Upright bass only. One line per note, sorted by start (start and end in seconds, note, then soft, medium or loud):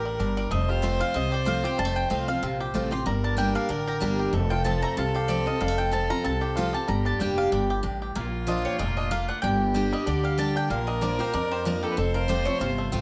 0.00 0.15 A1 medium
0.19 0.47 G1 medium
0.51 1.00 F1 loud
1.15 1.63 C2 medium
1.78 2.03 F1 medium
2.11 2.38 C2 medium
2.42 2.69 A#1 medium
2.74 3.01 A1 medium
3.06 3.55 G1 medium
3.70 3.97 A1 medium
4.01 4.29 G1 medium
4.33 4.82 F1 loud
4.97 5.46 C2 medium
5.61 6.10 F1 medium
6.25 6.74 C2 medium
6.88 7.13 G1 loud
7.20 7.47 F1 medium
7.52 7.79 G1 medium
7.84 8.11 A1 medium
8.16 8.65 A#1 loud
8.79 9.28 F1 medium
9.43 9.91 G1 loud
10.07 10.55 D2 medium
10.70 11.19 A#1 loud
11.34 11.82 F2 medium
11.97 12.46 F1 loud
12.60 12.87 G1 medium
12.93 13.01 A1 medium